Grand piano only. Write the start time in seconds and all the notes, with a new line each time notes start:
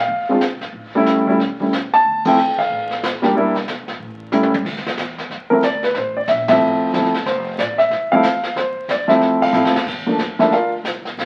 Already playing: F5
0.29 G#3 C4 D4 F4
0.95 G3 A3 C#4 E4
1.27 G3 A3 C#4 E4
1.60 G3 A3 C#4 E4
1.94 A5
2.25 F3 A3 C4 E4 G5
2.59 F5
3.22 G3 A#3 D4 G4
3.35 G3 A#3 D4 E4
4.32 G3 A3 C#4 E4
5.50 F3 A3 C4 E4 A#4
5.64 D5
5.84 B4
5.97 C5
6.17 D5
6.28 E5
6.49 F3 A3 C4 E4 E5
6.93 F3 A3 C4 E4
7.26 C5
7.59 D5
7.78 E5
8.12 F3 A3 C4 E4 F5
8.57 C5
8.91 D5
9.08 F3 A3 C4 E4 E5
9.42 F5
9.53 F3 A3 C4 E4
10.06 F3 A3 A#3 D4
10.39 F3 A3 A#3 D4 E4 E5
10.52 F4 A#4 D5 F5